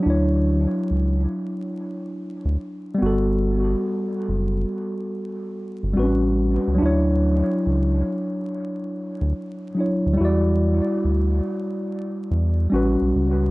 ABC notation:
X:1
M:4/4
L:1/16
Q:"Swing 16ths" 1/4=71
K:D
V:1 name="Tine electric piano"
[F,DEc]12- [F,DEc]2 [G,B,FA]2- | [G,B,FA]12 [G,=C^CFB]4 | [F,DEc]12- [F,DEc]2 [F,DEc]2 | [G,EFd]12 [G,CFB]4 |]
V:2 name="Analog synth bass" clef=bass
D,,3 z C,,2 z4 z D,, z2 G,,,2- | G,,,2 z2 F,,,2 z4 z G,,, A,,,3 C,, | D,,3 z C,,2 z4 z D,, z3 D,, | E,,3 z D,,2 z4 E,,2 A,,, B,,, C,,2 |]